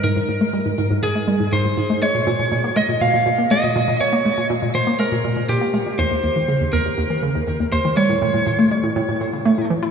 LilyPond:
<<
  \new Staff \with { instrumentName = "Lead electric guitar" } { \time 4/4 \key bes \dorian \tempo 4 = 121 bes'2 aes'4 c''4 | des''4. ees''8 f''4 ees''4 | des''4 r8 c''8 bes'4 g'4 | c''4. bes'2 c''8 |
cis''2.~ cis''8 r8 | }
  \new Staff \with { instrumentName = "Synth arpeggio sound" } { \clef bass \time 4/4 \key bes \dorian aes,16 aes,16 aes,16 aes16 g16 aes,16 aes,16 aes,16 aes,16 aes16 g16 aes,16 aes,16 aes,16 aes,16 aes16 | aes16 bes,16 bes,16 bes,16 bes,16 bes16 aes16 bes,16 bes,16 bes,16 bes,16 bes16 aes16 bes,16 bes,16 bes,16 | bes,16 bes16 aes16 bes,16 bes,16 bes,16 bes,16 bes16 aes16 bes,16 bes,16 bes,16 bes,16 bes16 aes16 bes,16 | ees,16 ees,16 ees,16 ees16 des16 ees,16 ees,16 ees,16 ees,16 ees16 des16 ees,16 ees,16 ees,16 ees,16 ees16 |
g16 a,16 a,16 a,16 a,16 a16 g16 a,16 a,16 a,16 a,16 cis16 a16 a,16 e16 e'16 | }
>>